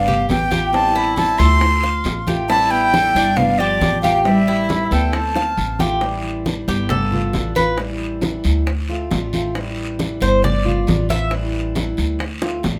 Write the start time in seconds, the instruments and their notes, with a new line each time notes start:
Already playing: upright bass G1, nylon-string guitar B3, flute F5
0.08 cuban tres G4, high bongo, high conga, low conga
0.29 upright bass A1, nylon-string guitar B3, flute G5, high bongo, low bongo, high conga, short guiro
0.51 steel-string acoustic guitar B3 F4, cuban tres G4, high bongo, high conga, short guiro
0.72 steel-string acoustic guitar E3 G3 C4 E4, nylon-string guitar C4, flute A5, high bongo, high conga, long guiro
0.96 cuban tres E4, high conga
1.16 nylon-string guitar C4, flute A5, high bongo, high conga, short guiro
1.38 upright bass D2, steel-string acoustic guitar G3 C4 E4, nylon-string guitar F4, cuban tres A4, flute C6, high bongo, high conga, short guiro
1.60 muted steel-string acoustic guitar stroke, high bongo, high conga, long guiro
1.83 cuban tres F5, high bongo, high conga
2.04 upright bass A1, high bongo, low bongo, high conga, short guiro
2.27 steel-string acoustic guitar A3 C4 F4, cuban tres G4, high bongo, high conga, short guiro
2.49 steel-string acoustic guitar E3 G3 E4, nylon-string guitar C4, cuban tres E4, flute A5, high bongo, high conga, long guiro
2.70 nylon-string guitar B3, flute G5, high conga
2.94 cuban tres A4, high bongo, high conga, short guiro
3.15 upright bass G1, steel-string acoustic guitar G3 C4 E4, cuban tres D4, high bongo, short guiro
3.37 nylon-string guitar B3, flute F5, muted steel-string acoustic guitar stroke, high bongo, high conga, low conga, long guiro
3.58 nylon-string guitar F3, cuban tres G4, flute D5, high bongo, high conga
3.81 upright bass A1, high bongo, low bongo, high conga, short guiro
4.02 nylon-string guitar A3, steel-string acoustic guitar B3 F4, cuban tres G4, flute F5, high bongo, high conga, short guiro
4.24 steel-string acoustic guitar E3 G3 C4 E4, nylon-string guitar G3, flute E5, high bongo, high conga, long guiro
4.48 cuban tres E4, high conga
4.69 high bongo, high conga, short guiro
4.90 upright bass D2, steel-string acoustic guitar G3 C4 E4, nylon-string guitar B3, cuban tres A4, flute G5, high bongo, high conga, short guiro
5.13 nylon-string guitar C4, flute A5, muted steel-string acoustic guitar stroke, high bongo, high conga, long guiro
5.35 cuban tres F5, high bongo, high conga
5.57 upright bass A1, high conga, short guiro
5.79 steel-string acoustic guitar A3 C4 F4, cuban tres G4, low bongo, high conga, short guiro
6.01 steel-string acoustic guitar E3 G3 C4 E4, high bongo, high conga, long guiro
6.24 high conga
6.45 steel-string acoustic guitar E3 G3 C4 E4, high bongo, high conga, short guiro
6.68 upright bass G1, cuban tres G4, high bongo, high conga, short guiro
6.89 cuban tres A4, muted steel-string acoustic guitar stroke, high bongo, high conga, low conga, long guiro
7.11 steel-string acoustic guitar B3 F4, high bongo, high conga, low conga
7.33 upright bass A1, steel-string acoustic guitar G3 B3 F4, high bongo, low bongo, high conga, short guiro
7.55 steel-string acoustic guitar B3 F4, cuban tres B4, high bongo, high conga, short guiro
7.77 steel-string acoustic guitar E3 G3 C4 E4, high bongo, high conga, long guiro
8.01 high conga
8.21 steel-string acoustic guitar E3 G3 C4 E4, high bongo, high conga, short guiro
8.44 upright bass D2, high bongo, high conga, short guiro
8.67 muted steel-string acoustic guitar stroke, high bongo, high conga, long guiro
8.89 steel-string acoustic guitar A3 C4 F4, high bongo, high conga
9.11 upright bass A1, steel-string acoustic guitar D3 A3 C4 F4, high bongo, low bongo, high conga, short guiro
9.33 steel-string acoustic guitar A3 C4 F4, high bongo, high conga, short guiro
9.55 steel-string acoustic guitar E3 G3 C4 E4, high bongo, high conga, long guiro
9.78 high conga
9.99 steel-string acoustic guitar E3 G3 C4 E4, high bongo, high conga, short guiro
10.21 upright bass G1, cuban tres C5, high bongo, high conga, short guiro
10.42 cuban tres D5, muted steel-string acoustic guitar stroke, high bongo, high conga, low conga, long guiro
10.65 steel-string acoustic guitar B3 F4, high bongo, high conga, low conga
10.87 upright bass A1, steel-string acoustic guitar G3 B3 F4, high bongo, low bongo, high conga, short guiro
11.09 steel-string acoustic guitar B3 F4, cuban tres E5, high bongo, high conga, short guiro
11.31 steel-string acoustic guitar E3 G3 C4 E4, high bongo, high conga, long guiro
11.55 high conga
11.75 steel-string acoustic guitar E3 G3 C4 E4, high bongo, high conga, short guiro
11.97 upright bass D2, high bongo, high conga, short guiro
12.19 muted steel-string acoustic guitar stroke, high bongo, high conga, long guiro
12.42 steel-string acoustic guitar A3 C4 F4, high bongo, high conga
12.63 upright bass A1, steel-string acoustic guitar D3 A3 C4 F4, low bongo, high conga, short guiro